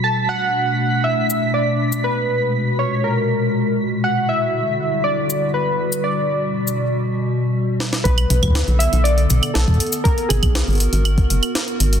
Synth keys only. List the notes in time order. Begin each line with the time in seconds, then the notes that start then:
0.04 A5
0.29 F#5
1.04 E5
1.54 D5
2.04 B4
2.79 C#5
3.04 A#4
4.04 F#5
4.29 E5
5.04 D5
5.54 B4
6.04 D5
8.04 B4
8.79 E5
9.04 D5
9.54 A4
10.04 A#4
10.29 G#4